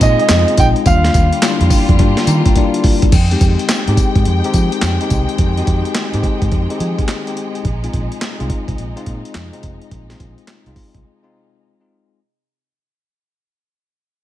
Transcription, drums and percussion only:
0.01 kick, closed hi-hat, tambourine
0.19 closed hi-hat
0.29 snare, clap, closed hi-hat, tambourine
0.48 closed hi-hat
0.57 kick, closed hi-hat, tambourine
0.76 closed hi-hat
0.86 kick, closed hi-hat, tambourine
1.04 snare, closed hi-hat
1.14 kick, closed hi-hat, tambourine
1.33 closed hi-hat
1.42 snare, clap, closed hi-hat, tambourine
1.61 closed hi-hat
1.70 kick, open hi-hat, tambourine
1.89 kick, closed hi-hat
1.99 kick, closed hi-hat
2.17 snare, closed hi-hat
2.27 closed hi-hat, tambourine
2.46 kick, closed hi-hat
2.56 kick, closed hi-hat
2.74 closed hi-hat
2.84 kick, open hi-hat
3.02 kick, closed hi-hat
3.12 kick, closed hi-hat, crash, tambourine
3.31 closed hi-hat
3.41 kick, closed hi-hat, tambourine
3.59 closed hi-hat
3.69 snare, clap, closed hi-hat, tambourine
3.88 closed hi-hat
3.97 kick, closed hi-hat, tambourine
4.16 kick, closed hi-hat
4.25 closed hi-hat
4.44 closed hi-hat
4.54 kick, closed hi-hat, tambourine
4.72 closed hi-hat
4.82 snare, clap, closed hi-hat, tambourine
5.01 closed hi-hat
5.10 kick, closed hi-hat, tambourine
5.29 closed hi-hat
5.38 kick, closed hi-hat
5.57 closed hi-hat
5.67 kick, closed hi-hat
5.85 closed hi-hat
5.95 snare, clap, closed hi-hat
6.14 closed hi-hat
6.23 kick, closed hi-hat
6.42 kick, closed hi-hat
6.52 kick, closed hi-hat
6.70 closed hi-hat
6.80 closed hi-hat
6.99 kick, closed hi-hat
7.08 snare, clap, closed hi-hat
7.27 closed hi-hat
7.37 closed hi-hat
7.55 closed hi-hat
7.65 kick, closed hi-hat
7.84 closed hi-hat
7.93 kick, closed hi-hat
8.12 closed hi-hat
8.21 snare, clap, closed hi-hat
8.40 closed hi-hat
8.50 kick, closed hi-hat
8.68 kick, closed hi-hat
8.78 closed hi-hat
8.97 closed hi-hat
9.06 kick, closed hi-hat
9.25 closed hi-hat
9.35 snare, clap, closed hi-hat
9.53 closed hi-hat
9.63 kick, closed hi-hat
9.82 closed hi-hat
9.91 kick, closed hi-hat
10.10 snare, closed hi-hat
10.20 kick, closed hi-hat
10.38 closed hi-hat
10.47 snare, clap, closed hi-hat
10.66 closed hi-hat
10.76 kick, open hi-hat
10.95 kick, closed hi-hat

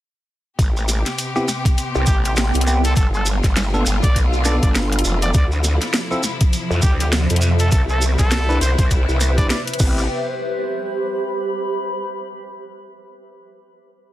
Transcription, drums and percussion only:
0.59 kick, closed hi-hat, maracas
0.77 maracas
0.89 snare, closed hi-hat, maracas
1.06 snare, closed hi-hat, maracas
1.18 closed hi-hat, maracas
1.36 maracas
1.48 snare, maracas
1.65 kick, closed hi-hat, maracas
1.78 closed hi-hat, maracas
1.95 maracas
2.06 kick, snare, closed hi-hat, maracas
2.25 closed hi-hat, maracas
2.36 snare, closed hi-hat, maracas
2.54 closed hi-hat, maracas
2.61 closed hi-hat
2.67 maracas
2.84 closed hi-hat, maracas
2.96 kick, closed hi-hat, maracas
3.14 maracas
3.26 closed hi-hat, maracas
3.43 kick, snare, closed hi-hat, maracas
3.56 snare, closed hi-hat, maracas
3.74 maracas
3.86 closed hi-hat, maracas
4.03 kick, closed hi-hat, maracas
4.16 kick, closed hi-hat, maracas
4.33 maracas
4.45 snare, closed hi-hat, maracas
4.63 kick, closed hi-hat, maracas
4.75 snare, closed hi-hat, maracas
4.92 closed hi-hat, maracas
4.99 closed hi-hat
5.04 maracas
5.22 closed hi-hat, maracas
5.34 kick, closed hi-hat, maracas
5.52 maracas
5.64 snare, closed hi-hat, maracas
5.81 snare, closed hi-hat, maracas
5.94 snare, closed hi-hat, maracas
6.11 maracas
6.23 snare, maracas
6.41 kick, closed hi-hat, maracas
6.53 closed hi-hat, maracas
6.71 maracas
6.82 kick, snare, closed hi-hat, maracas
7.00 closed hi-hat, maracas
7.13 snare, closed hi-hat, maracas
7.29 closed hi-hat, maracas
7.36 closed hi-hat
7.41 maracas
7.59 closed hi-hat, maracas
7.71 kick, closed hi-hat, maracas
7.89 maracas
8.01 maracas
8.18 kick, snare, closed hi-hat, maracas
8.31 snare, closed hi-hat, maracas
8.50 maracas
8.61 closed hi-hat, maracas
8.78 kick, closed hi-hat, maracas
8.91 kick, closed hi-hat, maracas
9.09 maracas
9.21 snare, closed hi-hat, maracas
9.38 kick, closed hi-hat, maracas
9.50 snare, closed hi-hat, maracas
9.67 closed hi-hat, maracas
9.73 closed hi-hat
9.79 kick, crash, maracas
9.98 maracas

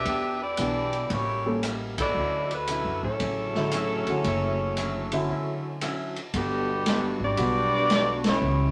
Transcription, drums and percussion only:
0.05 kick, ride
0.57 hi-hat pedal, ride
0.93 ride
1.10 kick, ride
1.63 cross-stick, hi-hat pedal, ride
1.98 kick, ride
2.51 ride
2.67 hi-hat pedal, ride
3.20 kick, ride
3.55 snare
3.71 cross-stick, hi-hat pedal, ride
4.07 ride
4.24 kick, ride
4.77 hi-hat pedal, ride
5.12 ride
5.29 kick
5.81 cross-stick, hi-hat pedal, ride
6.16 ride
6.34 kick, ride
6.86 snare, hi-hat pedal, ride
7.37 kick, ride
7.90 snare, hi-hat pedal, ride
8.24 snare, ride

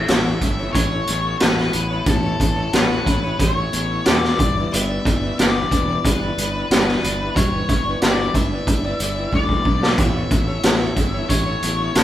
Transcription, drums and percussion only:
0.08 snare, closed hi-hat
0.41 kick, closed hi-hat
0.75 kick, closed hi-hat
1.07 closed hi-hat
1.40 snare, closed hi-hat
1.57 snare
1.73 closed hi-hat
2.06 kick, closed hi-hat
2.40 kick, closed hi-hat
2.73 snare, closed hi-hat
3.06 kick, closed hi-hat
3.40 kick, closed hi-hat
3.73 closed hi-hat
4.05 snare, closed hi-hat
4.24 snare
4.39 kick, closed hi-hat
4.73 closed hi-hat
5.05 kick, closed hi-hat
5.39 snare, closed hi-hat
5.71 kick, closed hi-hat
6.05 kick, closed hi-hat
6.38 closed hi-hat
6.71 snare, closed hi-hat
6.88 snare
7.04 closed hi-hat
7.36 kick, closed hi-hat
7.69 kick, closed hi-hat
8.02 snare, closed hi-hat
8.34 kick, closed hi-hat
8.67 kick, closed hi-hat
9.00 closed hi-hat
9.33 kick
9.49 kick
9.65 kick
9.83 snare
9.98 kick, closed hi-hat
10.31 kick, closed hi-hat
10.63 snare, closed hi-hat
10.96 kick, closed hi-hat
11.29 kick, closed hi-hat
11.62 closed hi-hat
11.95 snare, closed hi-hat

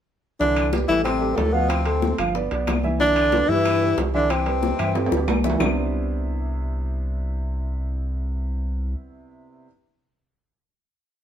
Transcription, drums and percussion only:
0.40 high bongo, high conga
0.56 high conga, high timbale, claves
0.73 high bongo, high conga, high timbale, low timbale
0.89 high conga
1.05 high bongo, high timbale, claves
1.21 high conga
1.38 high bongo, low bongo, high conga, high timbale, low timbale
1.70 high bongo, high conga, high timbale, claves
1.86 high conga, high timbale
2.02 high bongo, high conga, low timbale
2.18 high bongo, high timbale, claves
2.35 high bongo, high conga
2.51 high bongo, high conga, high timbale
2.67 high bongo, low bongo, high conga, high timbale, low timbale, claves
2.83 high bongo, high conga
3.00 high bongo
3.16 high timbale, claves
3.32 high bongo, high conga, high timbale, low timbale
3.49 high conga
3.65 high bongo, high conga, high timbale, claves
3.81 high conga
3.98 high bongo, low bongo, high conga, high timbale, low timbale
4.30 high bongo, high conga, high timbale, claves
4.46 high conga, high timbale
4.63 high bongo, high conga, low timbale
4.79 high bongo, high timbale, claves
4.95 high bongo, high conga, high timbale
5.06 high timbale
5.12 high bongo, high conga
5.17 high timbale
5.28 high conga, low timbale, claves
5.44 low bongo, high conga
5.50 low timbale
5.60 low bongo, low conga, low timbale, claves

